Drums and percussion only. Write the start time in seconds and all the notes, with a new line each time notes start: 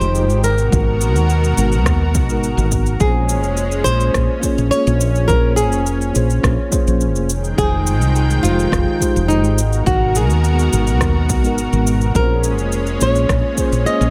0.01 shaker
0.15 shaker
0.30 shaker
0.44 shaker
0.58 shaker
0.72 kick, shaker
1.01 shaker
1.16 shaker
1.29 shaker
1.44 shaker
1.58 shaker
1.72 shaker
1.86 kick, cross-stick, shaker
2.15 kick, shaker
2.29 shaker
2.43 shaker
2.58 shaker
2.72 kick, shaker
2.86 shaker
3.00 kick, shaker
3.29 shaker
3.43 shaker
3.57 shaker
3.72 shaker
3.86 shaker
4.00 shaker
4.14 kick, cross-stick, shaker
4.43 kick, shaker
4.58 shaker
4.72 shaker
4.87 shaker
5.01 shaker
5.15 shaker
5.29 kick, shaker
5.57 shaker
5.72 shaker
5.86 shaker
6.01 shaker
6.15 shaker
6.30 shaker
6.44 kick, cross-stick, shaker
6.72 kick, shaker
6.87 shaker
7.01 shaker
7.16 shaker
7.29 shaker
7.44 shaker
7.58 kick, shaker
7.87 shaker
8.02 shaker
8.16 shaker
8.30 shaker
8.45 shaker
8.59 shaker
8.72 kick, cross-stick, shaker
9.01 kick, shaker
9.16 shaker
9.30 shaker
9.44 shaker
9.58 shaker
9.73 shaker
9.86 kick, shaker
10.15 shaker
10.30 shaker
10.44 shaker
10.59 shaker
10.73 shaker
10.87 shaker
11.01 kick, cross-stick, shaker
11.29 kick, shaker
11.44 shaker
11.58 shaker
11.73 shaker
11.87 shaker
12.01 shaker
12.15 kick, shaker
12.44 shaker
12.58 shaker
12.72 shaker
12.87 shaker
13.01 shaker
13.15 shaker
13.29 kick, cross-stick, shaker
13.57 kick, shaker
13.72 shaker
13.86 shaker
14.01 shaker